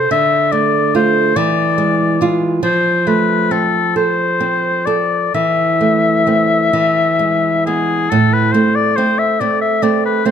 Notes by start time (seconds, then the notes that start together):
Already playing: A4 C5
0.11 D3 E5
0.52 A3 D5
0.95 A3 F4 C5
1.36 E3 D5
1.78 G#3
2.21 G#3 F4
2.63 F3 C5
3.07 A3 B4
3.51 C4 A4
3.96 A4 C5
4.40 C4
4.86 A4 D5
5.34 E3 E5
5.81 A3
6.26 A3 C4
6.73 E3
7.19 G#3
7.66 G#3 B3 G#4
8.10 A2 A4
8.33 B4
8.52 A3 C4 C5
8.76 D5
8.96 A3 C4 C5
9.19 E5
9.40 A3 C4 D5
9.62 E5
9.82 A3 C4 D5
10.05 B4
10.25 A3 C4 C5